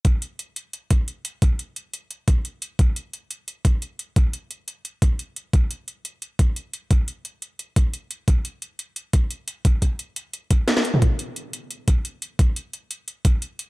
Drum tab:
HH |x-x-x-x-x-x-x-x-|x-x-x-x-x-x-x-x-|x-x-x-x-x-x-x-x-|x-x-x-x-x-x-x-x-|
SD |----------------|----------------|----------------|----------------|
T2 |----------------|----------------|----------------|----------------|
BD |o---------o-----|o---------o-----|o---------o-----|o---------o-----|

HH |x-x-x-x-x-x-x-x-|x-x-x-x-x-x-x-x-|x-x-x-x-x-x-x-x-|x-x-x-x-x-x-x-x-|
SD |----------------|----------------|----------------|------------oo--|
T2 |----------------|----------------|----------------|---------------o|
BD |o---------o-----|o---------o-----|o---------o-----|o-o-------o-----|

HH |x-x-x-x-x-x-x-x-|x-x-x-x-x-x-x-x-|
SD |----------------|----------------|
T2 |----------------|----------------|
BD |o---------o-----|o---------o-----|